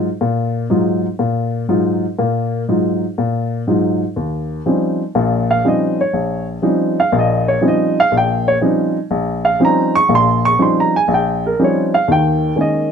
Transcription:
0.21 A#2
0.70 G#2 F#3 D#4 F4
1.19 A#2
1.69 G#2 F#3 D#4 F4
2.19 A#2 A#3
2.68 G#2 F#3 D#4 F4
3.18 A#2
3.67 G#2 F#3 D#4 F4
4.16 D#2
4.66 F3 G3 C4 C#4 D#4
5.15 A#1 A#2
5.51 F5
5.64 F3 G3 C4 C#4 D#4 D#5
6.01 C#5
6.13 A#1
6.62 F3 G3 C4 C#4 D#4
7.00 F5
7.12 A#1 A#2
7.19 D#5
7.48 C#5
7.61 F3 G3 C4 C#4 D#4
7.68 D#5
8.00 F5
8.12 A#1 A#2
8.17 G5
8.48 C#5
8.61 F3 G3 C4 C#4 D#4
9.11 A#1
9.45 F5
9.60 F3 G3 C4 C#4 D#4
9.65 A#5
9.95 C#6
10.09 A#1 A#2
10.15 C6
10.45 C#6
10.59 F3 G3 C4 C#4 D#4 C6
10.80 A#5
10.96 G#5
11.08 A#1
11.14 G5
11.46 A#4
11.59 F3 G3 C4 C#4 D#4
11.64 C#5
11.94 F5
12.08 D#2 D#3 G5
12.56 D#3 G#3 A#3 C#4
12.61 D#5

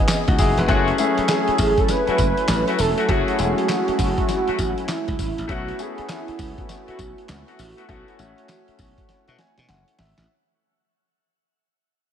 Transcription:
Already playing: E3 B3 C#4 F#4 G#4 D#5
0.08 snare, clap, closed hi-hat, tambourine
0.28 C#2 D#4 F#4, kick, closed hi-hat
0.38 F#1 E4 G#4, kick, open hi-hat, tambourine
0.58 E1 G#4 B4, closed hi-hat
0.68 F#1 F#3 A3 C#4 E4 F#4 G#4, kick, closed hi-hat
0.88 closed hi-hat
0.98 A3 C#4 E4 G#4, closed hi-hat, tambourine
1.18 muted slap bass stroke, closed hi-hat
1.28 G#4, snare, clap, closed hi-hat, tambourine
1.48 muted slap bass stroke, closed hi-hat
1.58 A1, kick, open hi-hat, tambourine
1.78 A4, kick, closed hi-hat
1.88 B4, snare, closed hi-hat, tambourine
2.07 A3 C#4 E4 F#4, muted slap bass stroke, closed hi-hat
2.18 F#1, kick, closed hi-hat, tambourine
2.37 closed hi-hat
2.48 A1, snare, clap, closed hi-hat, tambourine
2.67 A3 C#4 E4 F#4, closed hi-hat
2.79 E1 A4, open hi-hat, tambourine
2.97 A3 C#4 E4 F#4, closed hi-hat
3.08 F#1 A3 C#4 E4 F#4 G#4, kick, closed hi-hat
3.28 closed hi-hat
3.39 E1 G#3 C#4 E4 G#4, closed hi-hat, tambourine
3.45 A3
3.58 closed hi-hat
3.69 snare, clap, closed hi-hat, tambourine
3.88 muted slap bass stroke, closed hi-hat
3.99 F#1, kick, open hi-hat, tambourine
4.18 kick, closed hi-hat
4.29 snare, closed hi-hat, tambourine
4.47 A3 C#4 E4 F#4, muted slap bass stroke, closed hi-hat
4.59 A1, kick, closed hi-hat, tambourine
4.78 closed hi-hat
4.88 E4, snare, clap, closed hi-hat, tambourine
5.08 C#2, kick, closed hi-hat
5.19 G#1, kick, open hi-hat, tambourine
5.38 A1, closed hi-hat
5.48 B1 A3 B3 C#4 E4 F#4, kick, closed hi-hat
5.68 closed hi-hat
5.79 A3 C#4 E4 G#4, closed hi-hat, tambourine
5.98 muted slap bass stroke, closed hi-hat
6.09 E4, snare, clap, closed hi-hat, tambourine
6.28 muted slap bass stroke, closed hi-hat
6.39 C#2, kick, open hi-hat, tambourine
6.58 F#4, kick, closed hi-hat
6.69 snare, closed hi-hat, tambourine
6.87 A3 B3 E4 F#4, muted slap bass stroke, closed hi-hat
6.99 B1, kick, closed hi-hat, tambourine
7.18 closed hi-hat
7.29 C#2, snare, clap, closed hi-hat, tambourine
7.47 A3 B3 E4 F#4, closed hi-hat
7.59 A1, open hi-hat, tambourine
7.77 A3 B3 E4 F#4, closed hi-hat
7.88 B1 A3 B3 C#4 E4 F#4, kick, closed hi-hat
8.08 closed hi-hat
8.19 A1 A3 C#4 E4 F#4, closed hi-hat, tambourine
8.38 closed hi-hat
8.49 snare, clap, closed hi-hat, tambourine
8.68 muted slap bass stroke, closed hi-hat
8.79 B1, kick, open hi-hat, tambourine
8.98 kick, closed hi-hat
9.09 snare, closed hi-hat
9.27 B2 A3 B3 E4 F#4, closed hi-hat
9.39 G#5, snare, closed hi-hat
9.58 B2, snare, closed hi-hat
9.69 F#1 F#5, snare, closed hi-hat
9.88 closed hi-hat
9.99 G#1 E5, snare, open hi-hat
10.18 A1, snare, closed hi-hat

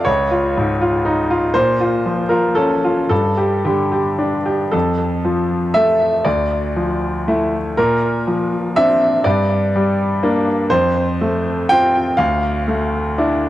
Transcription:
Already playing: F4 A4
0.05 C#2 C#5
0.31 F4
0.57 G#2
0.81 F4
1.05 D#4
1.30 F4
1.54 A#2 C5
1.80 F4
2.06 F3
2.29 F4 A#4
2.55 C#4 A4
2.84 F4
3.09 G2 A4
3.37 G4
3.65 D3 G4
3.92 G4
4.19 D4
4.46 G4
4.71 F2 A4
5.25 F3
5.74 A3 A4 E5
6.25 D2 D5
6.76 F3
7.28 A3 E4
7.77 A#2 A#4
8.27 F3
8.76 C4 D4 E5
9.24 G2 D5
9.75 G3
10.23 A#3 D4
10.70 F2 C5
11.21 A3
11.69 C4 F4 G5
12.17 D2 F5
12.68 A3
13.18 D4 E4

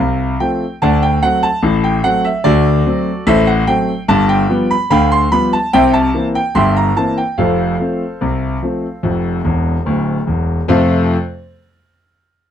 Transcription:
Already playing: F5
0.00 C2 C3
0.40 F3 A3 C4 G5
0.82 D2 D3 D5 F#5 A5
1.02 G5
1.23 F#3 A3 C4 F#5
1.43 A5
1.62 A1 A2
1.84 G5
2.04 F#3 A3 C4 F#5
2.25 E5
2.44 D2 D3 F#4 A4 D5
2.86 F#3 A3 C4
3.27 A1 A2 A4 C5 E5
3.47 F#5
3.67 F#3 A3 C4 G5
4.08 G1 G2 A5
4.29 G5
4.49 F3 G3 B3
4.71 B5
4.90 D2 D3 F5 G5 B5
5.12 C6
5.32 F3 G3 B3 B5
5.53 A5
5.73 C2 C3 C5 E5 G5
5.93 A5
6.14 E3 A#3 C4
6.35 G5
6.55 G1 G2 E5 G5 C6
6.77 A#5
6.97 E3 A#3 C4 A5
7.18 G5
7.38 F1 F2 A4 C5 F5
7.80 F3 A3 C4
8.21 C2 C3
8.62 F3 A3 C4
9.03 F1 F2
9.45 E1 E2
9.86 D1 D2
10.27 E1 E2
10.68 F2 C3 A3 C4 F4 A4

